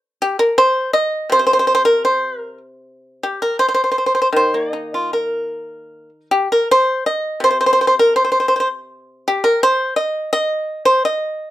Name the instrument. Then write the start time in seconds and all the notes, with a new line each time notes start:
pipa
0.22 G4
0.39 A#4
0.58 C5
0.93 D#5
1.30 C3 C5
1.39 C5
1.47 C5
1.53 C5
1.59 C5
1.67 C5
1.75 C5
1.85 A#4
2.05 C5
2.39 A#4
3.23 G4
3.42 A#4
3.59 C5
3.68 C5
3.74 C5
3.84 C5
3.91 C5
3.98 C5
4.06 C5
4.15 C5
4.22 C5
4.33 D#3 C5
4.54 A#3
4.71 D#4 D#5
4.94 F4
5.13 A#4
6.31 G4
6.52 A#4
6.71 C5
7.06 D#5
7.40 C3 C5
7.51 C5
7.61 C5
7.66 C5
7.73 C5
7.81 C5
7.87 C5
7.99 A#4
8.16 C5
8.25 C5
8.32 C5
8.40 C5
8.48 C5
8.56 C5
8.60 C5
9.28 G4
9.44 A#4
9.63 C5
9.96 D#5
10.33 D#5
10.85 C5
11.05 D#5